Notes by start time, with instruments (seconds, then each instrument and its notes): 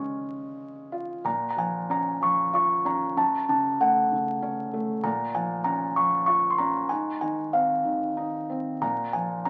Already playing: felt piano C#3 G#3 C#4, music box C#6
0.92 felt piano F4
1.25 felt piano A#2, music box A#5
1.50 music box A#5
1.57 felt piano F3, music box G#5
1.90 felt piano C#4, music box A#5
2.21 felt piano F3, music box C#6
2.54 felt piano F4, music box C#6
2.85 felt piano C#4, music box A#5
3.16 felt piano F#2, music box A5
3.49 felt piano C#3, music box A5
3.80 felt piano A3, music box F#5
4.12 felt piano C#3
4.42 felt piano C#4
4.73 felt piano A3
5.04 felt piano A#2, music box A#5
5.34 felt piano F3, music box G#5
5.64 felt piano C#4, music box A#5
5.96 felt piano F3, music box C#6
6.26 felt piano F4, music box C#6
6.50 music box C6
6.58 felt piano C#4, music box A#5
6.89 felt piano G#2, music box G#5
7.21 felt piano D#3, music box G#5
7.53 felt piano C4, music box F5
7.85 felt piano D#3
8.17 felt piano D#4
8.50 felt piano C4
8.81 felt piano A#2, music box A#5
9.13 felt piano F3, music box G#5
9.45 felt piano C#4, music box A#5